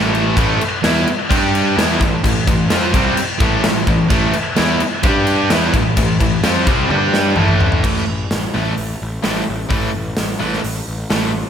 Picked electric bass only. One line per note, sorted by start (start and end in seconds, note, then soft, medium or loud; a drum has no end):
0.00 0.34 A1 medium
0.37 0.59 A1 loud
0.61 muted picked electric bass stroke soft
0.84 1.06 E2 medium
1.07 muted picked electric bass stroke soft
1.31 1.74 G2 medium
1.77 1.99 E2 medium
2.01 2.22 A1 medium
2.24 2.46 A1 medium
2.47 2.69 A1 medium
2.71 2.93 F2 medium
2.94 3.16 C2 loud
3.17 muted picked electric bass stroke soft
3.40 3.62 A1 loud
3.65 3.86 A1 medium
3.87 4.09 A1 medium
4.10 4.32 A1 medium
4.35 muted picked electric bass stroke soft
4.59 4.80 E2 medium
4.83 muted picked electric bass stroke soft
5.04 5.47 G2 loud
5.51 5.72 E2 medium
5.74 5.96 A1 medium
5.97 6.19 A1 medium
6.20 6.42 A1 medium
6.45 6.66 F2 medium
6.67 6.89 C2 loud
6.90 7.34 G2 medium
7.36 7.80 A1 loud
7.83 7.99 A1 medium
8.07 8.23 A1 medium
8.31 8.46 A1 medium
8.55 8.70 A1 medium
8.78 8.93 A1 medium
9.02 9.17 A1 medium
9.25 9.40 A1 medium
9.49 9.64 A1 medium
9.71 9.86 A1 medium
9.96 10.11 A1 medium
10.18 10.33 A1 medium
10.42 10.57 A1 medium
10.64 10.80 A1 medium
10.88 11.03 A1 medium
11.11 11.42 A1 medium